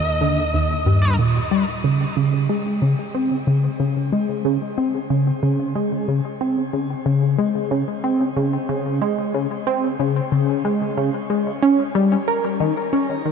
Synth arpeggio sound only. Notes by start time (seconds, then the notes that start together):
0.21 D3
0.54 D#2
0.86 G2
1.19 A#2
1.51 G3
1.84 C#3
2.17 C#3
2.49 G#3
2.82 C#3
3.15 C4
3.47 C#3
3.80 C#3
4.12 G#3
4.45 C#3
4.78 C4
5.10 C#3
5.43 C#3
5.75 G#3
6.08 C#3
6.41 C4
6.73 C#3
7.06 C#3
7.38 G#3
7.71 C#3
8.04 C4
8.37 C#3
8.69 C#3
9.02 G#3
9.34 C#3
9.67 C4
9.99 C#3
10.32 C#3
10.65 G#3
10.97 C#3
11.30 G#3
11.63 C#4
11.95 G3
12.28 A#4
12.60 D#3
12.93 C#4
13.25 D#3